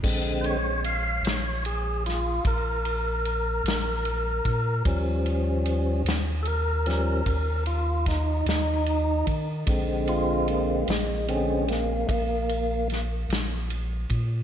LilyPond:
<<
  \new Staff \with { instrumentName = "Tonewheel organ" } { \time 12/8 \key ees \major \tempo 4. = 50 r8 <c'' des''>8 f''8 des''8 aes'8 f'8 bes'2. | r2 <a' bes'>4. f'8 ees'8 ees'4 r8 | r8 f'8 bes8 aes8 des'8 bes8 <a bes>4 r2 | }
  \new Staff \with { instrumentName = "Tonewheel organ" } { \clef bass \time 12/8 \key ees \major <d aes c'>8 r1 r4. | <f g des'>4. r4 <f g des'>8 r2. | <d aes c'>4. r8 <d aes c'>8 r2. r8 | }
  \new Staff \with { instrumentName = "Analog synth bass" } { \clef bass \time 12/8 \key ees \major bes,,4. bes,,4. bes,,4. bes,,4 bes,8 | ees,4. ees,4. ees,4. ees,4 ees8 | bes,,4. bes,,4. bes,,4. bes,,4 bes,8 | }
  \new DrumStaff \with { instrumentName = "Drums" } \drummode { \time 12/8 <cymc bd>8 cymr8 cymr8 <cymr sn>8 cymr8 <cymr sn>8 <bd cymr>8 cymr8 cymr8 <cymr sn>8 cymr8 <bd cymr>8 | <bd cymr>8 cymr8 cymr8 <cymr sn>8 cymr8 <cymr sn>8 <bd cymr>8 cymr8 <bd cymr sn>8 <cymr sn>8 cymr8 <bd cymr>8 | <bd cymr>8 cymr8 cymr8 <cymr sn>8 cymr8 <cymr sn>8 <bd cymr>8 cymr8 <cymr sn>8 <cymr sn>8 cymr8 <bd cymr>8 | }
>>